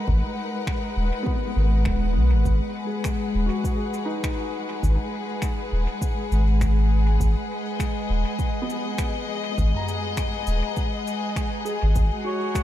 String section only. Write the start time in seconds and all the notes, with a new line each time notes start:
Already playing: G#3 D#4 A#4 B4 F#5
2.75 G#4
7.53 D#5
11.96 G#3
12.33 A#5